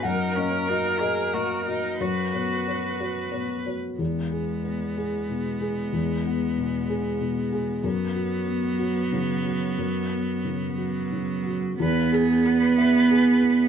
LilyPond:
<<
  \new Staff \with { instrumentName = "Viola" } { \time 6/8 \key e \lydian \tempo 4. = 61 ais'2. | b'2~ b'8 r8 | b2.~ | b2. |
b2.~ | b2~ b8 r8 | b'8 gis'8 b'2 | }
  \new Staff \with { instrumentName = "Felt piano" } { \time 6/8 \key e \lydian << { fis''4. dis''4. | cis''4. r4. | r2. | r2. |
r2. | r2. | r2. | } \\ { fis,8 <ais dis''>8 <fis' dis''>8 fis'8 <ais dis''>8 <fis' dis''>8 | fis,8 <b cis''>8 <fis' cis''>8 <fis' cis''>8 <b cis''>8 <fis' cis''>8 | e,8 gis'8 b8 gis'8 b,8 gis'8 | e,8 b8 b,8 gis'8 b,8 gis'8 |
fis,8 fis'8 b8 fis'8 cis8 fis'8 | fis,8 b8 cis8 fis'8 cis8 fis'8 | e,8 gis'8 b8 e''8 gis'8 b8 | } >> }
  \new Staff \with { instrumentName = "Cello" } { \time 6/8 \key e \lydian dis'8 cis'8 dis'8 gis'8 fis'8 dis'8 | fis'2~ fis'16 r8. | gis2.~ | gis2. |
fis2.~ | fis4. fis4. | b2. | }
>>